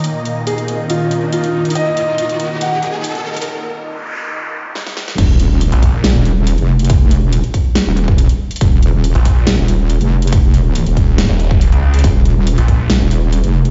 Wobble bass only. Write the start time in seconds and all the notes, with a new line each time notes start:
5.18 D#1
5.51 D#1
6.15 D#1
6.58 F1
7.17 E1
7.87 D#1
8.61 D#1
8.94 D#1
9.58 D#1
10.01 F1
10.87 D#1
12.04 D#1
12.37 D#1
13.01 D#1
13.44 F1